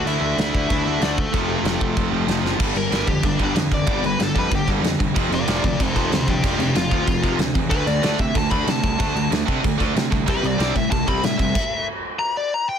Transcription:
<<
  \new Staff \with { instrumentName = "Overdriven electric guitar" } { \time 4/4 \key d \dorian \tempo 4 = 188 <e' e''>2 <e' e''>4 <d' d''>8 <a a'>8~ | <a a'>2.~ <a a'>8 r8 | r8 bes'4 g'8 d'8 d'8 r8 d''8~ | d''8 b'8 a'8 b'8 g'8 r4. |
r8 <f' d''>8 <f' d''>8 <f' d''>8 <a' c''>8 <a' c''>8 <a' c''>8 <d' g'>8 | <d' g'>8 <d' g'>8 f'2 r4 | b'8 d''4 e''8 a''8 b''8 a''4~ | a''4 r2. |
b'8 d''4 e''8 a''8 b''8 e''4~ | e''4 r4 bes''8 d''8 bes''8 g''8 | }
  \new Staff \with { instrumentName = "Distorted electric guitar" } { \clef bass \time 4/4 \key d \dorian <d a d'>2. <d a d'>8 r8 | <f, c f>2.~ <f, c f>8 <f, c f>8 | <g, d g>8 <g, d>8 <g, d g>8 <g, d>8 <g, d>8 <g, d g>8 <g, d>8 <g, d>8 | <g, d g>8 <g, d>8 <g, d>8 <g, d g>8 <g, d>8 <g, d g>8 <g, d>8 <g, d>8 |
<f, c f>8 <f, c>8 <f, c f>8 <f, c>8 <f, c>8 <f, c f>8 <f, c>8 <f, c>8 | <f, c f>8 <f, c>8 <f, c>8 <f, c f>8 <f, c>8 <f, c f>8 <f, c>8 <f, c>8 | <d a d'>8 <d a>8 <d a d'>8 <d a>8 <d a>8 <d a d'>8 <d a>8 <d a>8 | <d a d'>8 <d a>8 <d a>8 <d a d'>8 <d a>8 <d a d'>8 <d a>8 <d a>8 |
<c g c'>8 <c g>8 <c g c'>8 <c g>8 <c g>8 <c g c'>8 <c g>8 <c g>8 | r1 | }
  \new Staff \with { instrumentName = "Distorted electric guitar" } { \clef bass \time 4/4 \key d \dorian <d a d'>2 <d a d'>8 <d a d'>4 r8 | <f, c f>2~ <f, c f>8 <f, c f>8 <f, c f>4 | <g, d g>8 <g, d>8 <g, d g>8 <g, d>8 <g, d>8 <g, d g>8 <g, d>8 <g, d>8 | <g, d g>8 <g, d>8 <g, d>8 <g, d g>8 <g, d>8 <g, d g>8 <g, d>8 <g, d>8 |
<f, c f>8 <f, c>8 <f, c f>8 <f, c>8 <f, c>8 <f, c f>8 <f, c>8 <f, c>8 | <f, c f>8 <f, c>8 <f, c>8 <f, c f>8 <f, c>8 <f, c f>8 <f, c>8 <f, c>8 | <d a d'>8 <d a>8 <d a d'>8 <d a>8 <d a>8 <d a d'>8 <d a>8 <d a>8 | <d a d'>8 <d a>8 <d a>8 <d a d'>8 <d a>8 <d a d'>8 <d a>8 <d a>8 |
<c g c'>8 <c g>8 <c g c'>8 <c g>8 <c g>8 <c g c'>8 <c g>8 <c g>8 | r1 | }
  \new Staff \with { instrumentName = "Picked electric bass" } { \clef bass \time 4/4 \key d \dorian d,8 d,8 d,8 d,8 d,8 d,8 d,4 | f,,4 f,,8 f,,8 f,,8 f,,8 f,,8 fis,,8 | g,,8 g,,8 g,,8 f,8 g,,8 g,,8 f,8 f,,8 | g,,8 g,,8 g,,8 f,8 g,,8 g,,8 f,8 f,,8 |
f,,8 f,,8 f,,8 d,8 f,,8 f,,8 d,8 d,8 | f,,8 f,,8 f,,8 d,8 f,,8 f,,8 d,8 e,8 | d,8 d,8 d,8 c8 d,8 d,8 c8 c,8 | d,8 d,8 d,8 c8 d,8 d,8 c8 c,8 |
c,8 c,8 c,8 a,8 c,8 c,8 a,8 f,,8 | r1 | }
  \new DrumStaff \with { instrumentName = "Drums" } \drummode { \time 4/4 cymc4 <cymc sn>8 bd8 <cymc bd>4 <cymc sn>8 bd8 | <cymc bd>4 <cymc sn>8 bd8 <cymc bd>4 <cymc sn>8 sn8 | <cymc bd>8 cymc8 <cymc sn>8 <cymc bd>8 <cymc bd>8 <cymc bd>8 <cymc sn>8 <cymc bd>8 | <cymc bd>8 cymc8 <cymc sn>8 <cymc bd>8 <cymc bd>8 <cymc bd>8 <cymc sn>8 <cymc bd>8 |
<cymc bd>8 cymc8 <cymc sn>8 <cymc bd>8 <cymc bd>8 <cymc bd>8 <cymc sn>8 <cymc bd>8 | <cymc bd>8 cymc8 <cymc sn>8 <cymc bd>8 <cymc bd>8 <cymc bd>8 <cymc sn>8 <cymc bd>8 | <cymc bd>8 cymc8 <cymc sn>8 <cymc bd>8 <cymc bd>8 <cymc bd>8 <cymc sn>8 <cymc bd>8 | <cymc bd>8 cymc8 <cymc sn>8 <cymc bd>8 <cymc bd>8 <cymc bd>8 <cymc sn>8 <cymc bd>8 |
<cymc bd>8 cymc8 <cymc sn>8 <cymc bd>8 <cymc bd>8 <cymc bd>8 <cymc sn>8 <cymc bd>8 | <cymc bd>4 r4 r4 r4 | }
>>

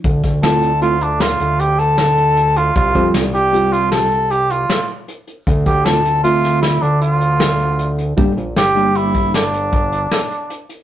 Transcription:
<<
  \new Staff \with { instrumentName = "Cor anglais" } { \time 7/4 \key d \minor \tempo 4 = 155 r4 a'4 f'8 d'8 f'4 g'8 a'2 f'8 | f'4 r8 g'4 f'8 a'4 g'8 f'4 r4. | r8 g'8 a'4 f'4 e'8 d'8 f'2~ f'8 r8 | r4 g'4 e'4 d'2.~ d'8 r8 | }
  \new Staff \with { instrumentName = "Tine electric piano" } { \time 7/4 \key d \minor r4 <a c' e' f'>8 r8 <a c' e' f'>8 r1 r8 | r8 <g c' f' g'>8 r4 <g c' f' g'>4. r2. r8 | r4 <a c' e' f'>8 r8 <a c' f' e''>4. r2. r8 | <g bes d' g'>8 r4 <g bes d' g'>4. r1 | }
  \new Staff \with { instrumentName = "Analog synth bass" } { \clef bass \time 7/4 \key d \minor d,8 d,2. d,2.~ d,8 | c,8 f,8 c,1 r2 | d,8 d,2. d,2.~ d,8 | g,,8 bes,,8 g,,1 r2 | }
  \new DrumStaff \with { instrumentName = "Drums" } \drummode { \time 7/4 <hh bd>8 <hh bd sn>8 <hh sn>8 hh8 hh8 hh8 <hh sn>8 hh8 hh8 hh8 <hh sn>8 hh8 hh8 hh8 | <hh bd>8 <hh bd>8 <hh sn>8 hh8 hh8 hh8 <hh sn>8 hh8 hh8 hh8 <hh sn>8 hh8 hh8 hh8 | <hh bd>8 <hh bd>8 <hh sn>8 hh8 hh8 <hh sn>8 <hh sn>8 hh8 hh8 hh8 <hh sn>8 hh8 hh8 hh8 | <hh bd>8 hh8 <hh sn>8 hh8 hh8 <hh bd>8 <hh sn>8 hh8 <hh bd>8 hh8 <hh sn>8 hh8 hh8 hh8 | }
>>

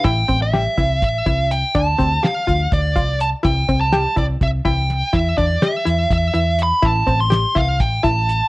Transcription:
<<
  \new Staff \with { instrumentName = "Lead electric guitar" } { \time 7/8 \key a \minor \tempo 4 = 124 g''8. e''4~ e''16 e''4 g''8 | a''4 f''4 d''4 a''8 | g''8. a''8. d''8 e''8 g''4 | e''8 d''8 e''4 e''4 b''8 |
a''8. c'''8. f''8 g''8 a''4 | }
  \new Staff \with { instrumentName = "Synth arpeggio sound" } { \time 7/8 \key a \minor e'8 c'8 g'8 e'4 e'4 | d'8 c'8 g'8 f'4 f'4 | e'8 c'8 g'8 e'4 e'4 | e'8 d'8 g'8 e'4 e'4 |
e'8 c'8 g'8 e'4 e'4 | }
  \new Staff \with { instrumentName = "Picked electric bass" } { \clef bass \time 7/8 \key a \minor a,,8 a,,4 c,8 a,,8 c,4 | d,8 d,8 r8 d,8 d,8 c,4 | c,8 c,4 c,8 c,8 c,4 | e,8 e,8 r8 e,8 e,8 e,4 |
a,,8 a,,4 c,8 a,,8 a,,4 | }
  \new DrumStaff \with { instrumentName = "Drums" } \drummode { \time 7/8 <hh bd>8 <hh bd>8 <hh sn>8 <hh bd sn>8 <hh bd>8 <hh bd>8 hh8 | <hh bd>8 <hh bd>8 <hh sn>8 <hh bd>8 <hh bd>8 <hh bd>8 hh8 | <hh bd>8 <hh bd>8 <hh sn>8 <hh bd>8 <hh bd>8 <hh bd>8 <hh sn>8 | <hh bd>8 <hh bd>8 <hh sn>8 hh8 <hh bd>8 hh8 hh8 |
<hh bd>8 <hh bd>8 <hh sn>8 <hh bd>8 <hh bd>8 <hh bd>8 hh8 | }
>>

